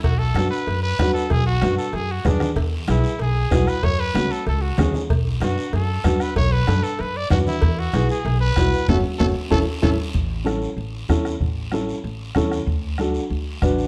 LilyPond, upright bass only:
\new Staff \with { instrumentName = "Upright bass" } { \clef bass \time 4/4 \key a \major \tempo 4 = 190 b,,4 fis,8 r8 fis,4 fis,8 r8 | b,,4 fis,8 r8 fis,4 fis,8 r8 | e,4 b,,8 r8 b,,4 b,,8 r8 | fis,4 cis,8 r8 cis,4 cis,8 r8 |
b,,4 fis,8 r8 fis,4 fis,8 r8 | b,,4 fis,8 r8 fis,4 fis,8 r8 | e,4 b,,8 r8 b,,4 b,,8 r8 | fis,,8 r8 fis,,8 r8 a,,8 r8 a,,8 r8 |
a,,2 a,,4 e,4 | a,,2 a,,4 e,4 | d,2 d,4 a,,4 | }